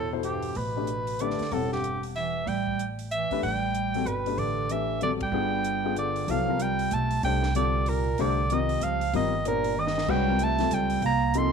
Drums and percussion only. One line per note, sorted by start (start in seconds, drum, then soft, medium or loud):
0.23 closed hi-hat soft
0.43 open hi-hat soft
0.55 open hi-hat soft
0.87 closed hi-hat soft
1.07 open hi-hat soft
1.19 closed hi-hat soft
1.30 snare soft
1.39 snare soft
1.39 open hi-hat soft
1.52 open hi-hat soft
1.72 snare soft
1.84 closed hi-hat soft
2.03 open hi-hat soft
2.16 open hi-hat soft
2.47 open hi-hat soft
2.67 kick soft
2.79 closed hi-hat soft
2.99 open hi-hat soft
3.11 closed hi-hat soft
3.31 kick soft
3.31 open hi-hat soft
3.43 open hi-hat soft
3.75 closed hi-hat soft
3.94 open hi-hat soft
4.07 closed hi-hat soft
4.26 open hi-hat soft
4.38 open hi-hat soft
4.69 closed hi-hat soft
5.01 closed hi-hat soft
5.21 kick medium
5.21 ride medium
5.64 closed hi-hat soft
5.96 closed hi-hat soft
6.16 open hi-hat soft
6.28 open hi-hat soft
6.60 closed hi-hat medium
6.79 open hi-hat soft
6.91 closed hi-hat soft
7.11 open hi-hat soft
7.23 open hi-hat soft
7.43 snare medium
7.55 closed hi-hat medium
7.86 open hi-hat soft
8.18 open hi-hat soft
8.50 closed hi-hat medium
8.69 open hi-hat soft
8.81 closed hi-hat medium
9.01 open hi-hat soft
9.14 open hi-hat soft
9.45 closed hi-hat medium
9.64 open hi-hat soft
9.87 snare medium
9.98 snare medium
10.08 kick medium
10.08 crash medium
10.39 closed hi-hat medium
10.59 snare soft
10.59 open hi-hat soft
10.71 closed hi-hat medium
10.90 open hi-hat soft
11.02 open hi-hat soft
11.34 closed hi-hat medium